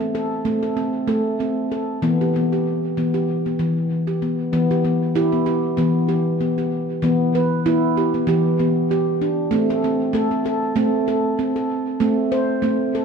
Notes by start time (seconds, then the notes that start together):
Already playing: A3
0.01 C4
0.15 A4
0.45 A3 C4
0.63 A4
0.77 C4
1.08 A3 A4
1.40 C4
1.72 A4
2.02 E3 B3
2.21 G4
2.36 B3
2.52 G4
2.97 E3 B3
3.14 G4
3.46 B3
3.59 E3
4.07 G4
4.22 B3
4.53 E3 B3
4.71 G4
4.85 B3
5.15 E4 G4
5.32 B3
5.46 G4
5.77 E3 B3
6.09 G4
6.41 B3
6.58 G4
7.02 E3 B3
7.35 B4
7.66 B3 E4
7.97 G4
8.14 B3
8.27 E3 G4
8.59 B3
8.91 G4
9.21 D4
9.51 A3 C4
9.70 A4
9.84 C4
10.13 A3 A4
10.31 C4
10.46 A4
10.76 A3 C4
11.08 A4
11.39 C4
11.56 A4
12.00 A3 C4
12.32 C5
12.62 A3 C4
12.95 A4